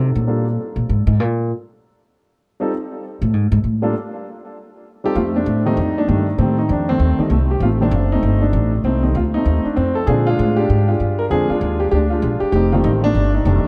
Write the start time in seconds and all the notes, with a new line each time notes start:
Already playing: C3
0.15 A#2
0.27 G3 A#3 D4 F4 A4
0.76 A#2
0.89 G#2
1.07 G#2
1.20 A#2
2.60 G3 C4 D#4 F4 A4
3.22 A2
3.33 G#2
3.52 G#2
3.64 A2
3.82 G3 A#3 D4 F4 A4
5.04 G3 C4 D#4 F4 G4 A4
5.15 F2 A3 C4 F4
5.36 A3 D4
5.46 A2
5.65 D#3 G3 A3 C4 D#4
5.77 F2
5.98 A3 D4
6.08 G2 D#3 G3 A3 D4
6.38 A2 D#3 G3 A3 C4
6.58 D#4
6.69 F2 D4
6.89 D#3 A3 C4
6.99 D#2
7.19 D#3 G3 A3 C4 D#4, muted upright bass stroke
7.30 C2 A3
7.51 G4
7.60 A1 F4
7.65 A3 C4
7.81 D#3 G3 A3 C4 D4
7.85 A3
7.91 F#1
8.12 A3 C4 D#4
8.23 G1
8.41 A3 D4
8.53 A1
8.84 C2 A3 C4 D#4
9.03 D#3 G3 A3 C4 D#4
9.15 D2 F4
9.34 A3 C4 D#4
9.45 D#2
9.65 D4, muted upright bass stroke
9.76 F2 C4
9.95 A4
10.07 A#2 D3 F3 G#3 C4 D4 F4 G#4
10.27 G#3 D4 F4
10.39 A2
10.57 D4 G4
10.70 G#2
10.88 D4 F4 G#4
11.00 G2
11.19 A#4
11.30 F2 D3 F3 G#3 C4 D4 F4 G#4
11.50 G#3 D4 F4, muted upright bass stroke
11.61 D#2
11.80 G4
11.91 D2 D4 G4
12.10 G#3 D4 F4
12.22 A#1
12.40 G4, muted upright bass stroke
12.52 F1 C4 D#4 G4
12.72 D#3 G3 A3 C4 F4
12.84 A1 D#4
13.04 A3 D4
13.15 G1
13.34 D#4
13.45 F1 D#3 G3 A3 D4 D#4